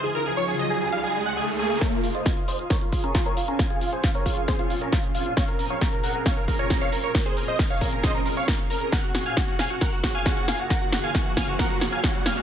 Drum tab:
HH |----------------|xxoxxxoxxxoxxxox|xxoxxxoxxxoxxxox|xxoxxxoxxxoxxxox|
SD |----------------|o---o---o---o---|o---o---o---o---|o---o---o---o---|
BD |----------------|o---o---o-o-o---|o---o-o-o---o---|o---o---o-o-o---|

HH |xxoxxxoxxxoxxxox|xxoxxxoxxxoxxxo-|xxoxxxoxxxoxxxox|
SD |o---o---o---o---|o-o-o-o-o-o-o-o-|o-o-o-o-o-o-o-o-|
BD |o---o-o-o---o---|o---o---o-o-o---|o---o-o-o---o---|